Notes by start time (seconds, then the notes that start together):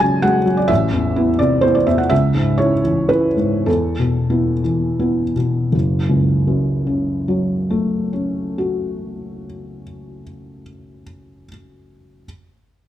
Already playing: F#2 F#3 G#3 F#4 A5
0.00 C#3 G#5
0.22 G#3 F#4 F#5
0.45 F#3
0.57 D5
0.68 A1 E5
0.92 E2
1.16 B3 E4
1.39 C3 D5
1.61 B3 E4 C5
1.75 D5
1.87 E2 E5
1.98 F#5
2.10 C#2 E5
2.35 G#2
2.58 C#4 E4 C#5
2.84 E3
3.09 C#4 E4 B4
3.37 G#2
3.66 E2 A4
3.99 B2
4.30 B3 E4
4.64 E3
4.99 B3 E4
5.36 B2
5.72 F#1
6.09 C#2
6.47 F#2
6.87 C#3
7.28 F#3
7.70 A3
8.13 C#4
8.58 F#4